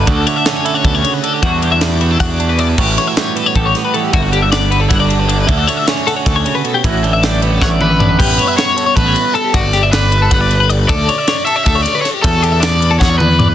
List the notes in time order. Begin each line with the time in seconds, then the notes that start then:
Already playing: D4
0.07 D2 D3 F#4 A4, kick, ride
0.27 A3 C#5, ride
0.36 E5
0.46 C#4 C#5, snare, ride
0.65 E4 A4, ride
0.74 F#4 C#5
0.84 D2 B2 A4, kick, ride
0.95 C#5
1.04 C#3, ride
1.14 B4
1.23 D3 A4, ride
1.34 G4
1.42 E2 E3 G3 D4 F#4, kick, ride
1.47 F#4
1.62 E3 G4, ride
1.72 E5
1.81 G3 D5, snare, ride
2.01 B3 B4, ride
2.11 D4 A4
2.20 E2 F#4 F#5, kick, ride
2.30 D5
2.40 D4, ride
2.49 B4
2.59 E3 D5, ride
2.69 B4
2.78 A1 A2 F#4 G4, kick, crash
2.97 E3 C#5, snare, ride
3.08 E5
3.17 G3 C#5, snare, ride
3.36 B3 A4, ride
3.46 C#5
3.55 A1 G4 A4, kick, ride
3.66 C#5
3.75 B3, snare, ride
3.85 B4
3.94 E3 A4, ride
4.04 G4
4.13 G1 G2 E4 F#4, kick, ride
4.22 F#4
4.32 D3 G4, ride
4.42 E5
4.52 B3 D5, snare, ride
4.70 B3 B4, ride
4.80 D4 A4
4.89 G1 E4 F#5, kick, snare, ride
4.99 F#4 D5
5.08 D4, ride
5.19 B4
5.27 D3 D5, ride
5.38 B4
5.47 D2 D3 E4 A4, kick, ride
5.58 F#4
5.67 A3 C#5, ride
5.77 E5
5.87 C#4 C#5, snare, ride
6.07 F#4 A4, snare, ride
6.16 C#5
6.25 D2 D3 A4, kick, snare, ride
6.36 C#5
6.45 C#3, ride
6.55 B4
6.64 B2 A4, ride
6.74 G4
6.84 A1 A2 E4 F#4, kick, ride
7.03 D3 G4, ride
7.13 E5
7.23 G3 D5, snare, ride
7.42 B3 B4, ride
7.52 A4
7.62 A1 E4 C#5 F#5, kick, snare
7.71 D5
7.81 B3 B4, mid tom
7.90 B4
7.99 D3 D5, floor tom
8.09 B4
8.19 A1 G4 B4, kick, crash
8.38 C#5, ride
8.47 E5
8.57 C#5, snare, ride
8.77 A4, ride
8.86 C#5
8.96 A1 A4 B4, kick, ride
9.06 C#5
9.16 ride
9.25 B4
9.34 A4, ride
9.44 G4
9.54 G1 F#4 D5, kick, ride
9.73 G4, snare, ride
9.83 E5
9.92 B4 D5, snare, ride
10.11 B4, ride
10.22 A4
10.31 G1 F#5, kick, snare, ride
10.41 D5
10.50 ride
10.60 B4
10.70 D5, ride
10.79 B4
10.88 D2 A4 D5, kick, ride
11.09 C#5, ride
11.18 E5
11.27 C#5, snare, ride
11.45 A4 E5, ride
11.56 C#5
11.64 D2 A4 E5, kick, snare, ride
11.75 C#5
11.83 D5, snare, ride
11.95 B4
12.01 A4 C#5, ride
12.05 snare
12.14 G4
12.22 E2 F#4 A4, kick, ride
12.43 G4, ride
12.52 E5
12.60 D5, snare, ride
12.81 B4, ride
12.91 A4
12.99 E2 C#5 F#5, kick, snare
13.10 D5
13.18 B4, mid tom
13.29 B4
13.39 D5, floor tom
13.48 B4